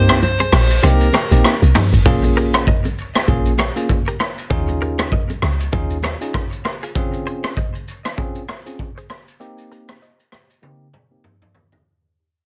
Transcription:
Already playing: C2 A#3 C4 D#4 G4 C5
0.09 cross-stick, shaker
0.22 C5, high bongo, low conga, shaker
0.40 G#4 C5, low bongo, shaker
0.52 A#1 G4 A#4, cross-stick, open hi-hat, high bongo, shaker
0.70 shaker
0.82 C2 A#3 C4 D#4 G4 A#4 C5, hi-hat pedal, low conga, shaker
1.00 shaker
1.13 G4 A#4, cross-stick, low bongo, shaker
1.31 A#1 A#3 C4 D#4 G4, shaker
1.44 cross-stick, high bongo, shaker
1.62 C2, shaker
1.75 D#4 G4, cross-stick, mid tom, open hi-hat, high bongo, shaker
1.93 G#1, shaker
2.05 A#1 A#3 C#4 F4 G#4, kick, low conga, shaker
2.23 low bongo, shaker
2.37 G4 A#4, shaker
2.54 A#4 C#5, cross-stick, shaker
2.67 A#4 D#5, kick, high bongo, low conga, shaker
2.85 low bongo, shaker
2.97 C#2, shaker
3.15 cross-stick, shaker
3.27 A#1 A#3 C#4 F4 G#4, kick, low conga, shaker
3.46 shaker
3.58 A#4 C#5, cross-stick, low bongo, shaker
3.76 A#3 C#4 F4 G#4, shaker
3.89 kick, high bongo, shaker
4.08 G4 A#4, shaker
4.20 A#4 C#5, cross-stick, high bongo, shaker
4.38 shaker
4.50 D#2 C#4 D#4 F4 G#4, kick, low conga, shaker
4.68 low bongo, shaker
4.82 G4 A#4, shaker
4.99 A#4 C#5, cross-stick, shaker
5.12 A#4 D#5, kick, high bongo, low conga, shaker
5.30 low bongo, shaker
5.42 C#2, cross-stick, shaker
5.60 shaker
5.72 D#2 C#4 D#4 F4 G#4, kick, low conga, shaker
5.90 shaker
6.03 A#4 C#5, cross-stick, low bongo, shaker
6.21 C#4 D#4 F4 G#4, shaker
6.34 F4 A#4, kick, cross-stick, high bongo, shaker
6.53 shaker
6.65 G4 A#4, cross-stick, high bongo, shaker
6.83 F4 G#4, shaker
6.95 C4 C#4 F4 G#4, kick, shaker
7.13 shaker
7.27 G#4 C5, shaker
7.44 A#4 C#5, cross-stick, shaker
7.57 C5 D#5, kick, shaker
7.75 shaker
7.88 shaker
8.05 cross-stick, shaker
8.17 C4 C#4 F4 G#4, kick, shaker
8.35 shaker
8.48 A#4 C#5, cross-stick, shaker
8.66 C4 C#4 F4 G#4, shaker
8.79 kick, shaker
8.97 G#4 C5, shaker
9.09 A#4 C#5, cross-stick, shaker
9.28 shaker
9.40 A#3 C4 D#4 G4, shaker
9.58 shaker
9.72 G4 A#4, shaker
9.89 G#4 C5, cross-stick, shaker
10.02 C5 D#5, shaker
10.20 shaker
10.32 cross-stick, shaker
10.50 shaker
10.62 A#3 C4 D#4 G4, high tom
10.94 G#4 C5, mid tom
11.11 A#3 C4 D#4 G4
11.24 G4 A#4, mid tom
11.42 mid tom
11.55 G4 A#4, floor tom
11.72 D#4 G4, floor tom

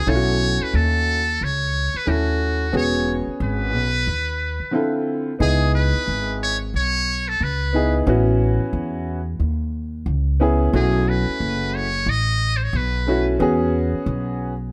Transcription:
Already playing: G#4
0.06 B1 A3 C#4 E4 F4 C#5
0.15 F#4
0.60 B4, muted upright bass stroke
0.74 D#2 A4
1.41 C#2 C#5
1.94 B4, muted upright bass stroke
2.06 D#2 A3 C#4 E4 F#4 A4
2.72 E1 B3 C#4 F#4 G#4
2.77 C#5
3.27 muted upright bass stroke
3.40 G#1 B4
3.74 B1
4.07 D#2
4.60 muted upright bass stroke
4.71 D3 C4 E4 F4 A4
5.39 C#2 B3 D#4 E4 G#4
5.75 B4
5.94 muted upright bass stroke
6.08 G#1
6.43 C#5
6.74 B1 C#5
7.28 A4
7.40 C#2 B4
7.73 B3 D#4 E4 G#4
8.06 A1 B3 C#4 E4 F#4
8.60 muted upright bass stroke
8.73 E2
9.40 D#2
10.06 C#2
10.40 B3 C#4 E4 G#4
10.73 B1 A3 C#4 E4 F#4 G#4
11.09 B4
11.40 F#1
11.76 C#5
12.06 A1 D#5
12.57 C5
12.63 C#5
12.73 B1 B4
13.07 A3 C#4 E4 F#4
13.39 E2 B3 C#4 F#4 G#4
13.93 muted upright bass stroke
14.06 B1

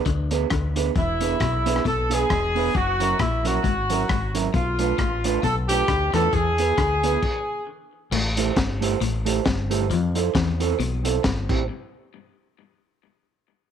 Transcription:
0.06 D2 D3, kick, closed hi-hat
0.31 B3 D4 G#4 B4, closed hi-hat
0.50 D2 D3, kick, cross-stick, closed hi-hat
0.76 B3 D4 G#4 B4, closed hi-hat
0.95 E1 E2 E4, kick, closed hi-hat
1.21 B3 D4 G#4 B4, closed hi-hat
1.40 B1 B2, kick, cross-stick, closed hi-hat
1.66 B3 D4 G#4 B4, closed hi-hat
1.76 cross-stick
1.85 B1 B2 A4, kick, closed hi-hat
2.10 B3 D4 G#4 B4, closed hi-hat
2.30 E1 E2, kick, cross-stick, closed hi-hat
2.55 B3 D4 G#4 B4, open hi-hat
2.75 F#1 F#2 F#4, kick, closed hi-hat
3.00 F#3 C#4 E4 A#4, closed hi-hat
3.19 A#1 A#2 E4, kick, cross-stick, closed hi-hat
3.44 F#3 C#4 E4 F#4 A#4, closed hi-hat
3.64 G#1 G#2, kick, closed hi-hat
3.89 F#3 C#4 E4 A#4, closed hi-hat
4.09 G#1 G#2, kick, cross-stick, closed hi-hat
4.34 F#3 C#4 E4 A#4, closed hi-hat
4.54 B1 B2 F4, kick, closed hi-hat
4.79 A3 D4 F4 B4, closed hi-hat
4.98 A1 A2, kick, cross-stick, closed hi-hat
5.24 A3 D4 F4 B4, closed hi-hat
5.43 B1 B2 A4, kick, closed hi-hat
5.68 A3 D4 F4 G4 B4, closed hi-hat
5.88 D2 D3, kick, cross-stick, closed hi-hat
6.13 E2 E3 A3 D4 F4 A4 B4, cross-stick, closed hi-hat
6.33 E2 E3 G#4, kick, closed hi-hat
6.58 B3 E4 G#4 B4, closed hi-hat
6.77 D2 D3, kick, cross-stick, closed hi-hat
7.03 B3 E4 G#4 B4, closed hi-hat
7.22 kick, crash
8.11 A1 A2, crash
8.37 A3 E4 G4 C5, closed hi-hat
8.56 G1 G2, kick, snare, closed hi-hat
8.81 A3 E4 G4 C5, closed hi-hat
9.01 A1 A2, closed hi-hat
9.25 A3 E4 G4 C5, closed hi-hat
9.46 G1 G2, kick, snare, closed hi-hat
9.70 A3 E4 G4 C5, closed hi-hat
9.90 F2 F3, closed hi-hat
10.15 C4 E4 A4 C5, closed hi-hat
10.35 E2 E3, kick, snare, closed hi-hat
10.60 C4 E4 A4 C5, closed hi-hat
10.79 B1 B2, closed hi-hat
11.04 C4 E4 A4 C5, closed hi-hat
11.24 G1 G2, kick, snare, closed hi-hat
11.49 A1 C4 E4 G4 C5, kick, crash

